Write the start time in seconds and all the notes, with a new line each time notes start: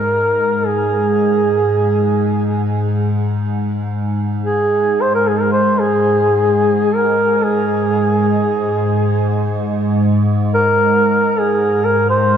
Already playing: A#4
0.11 G#2
0.66 G#4
4.44 G#4
5.01 C5
5.15 A#4
5.28 G#4
5.40 A#4
5.52 C5
5.79 G#4
6.95 A#4
7.45 G#4
10.54 A#4
11.40 G#4
11.85 A#4
12.10 C5